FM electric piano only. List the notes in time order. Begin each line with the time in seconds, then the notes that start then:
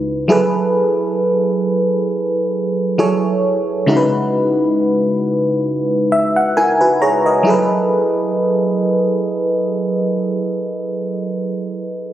Already playing: C#3 G#3 D#4 E4 F#4 B4
0.28 F#3 E4 G#4 A4 B4
2.98 F#3 E4 G#4 A4 C#5
3.86 C#3 G#3 D#4 E4 F#4 A#4
3.97 B4
6.12 E5
6.36 F#5
6.57 E4 A#4 G#5
6.81 F#4 B4
7.02 G#4 C#5 A#5
7.26 A#4 D#5
7.43 F#3 E4 G#4
7.48 A4 B4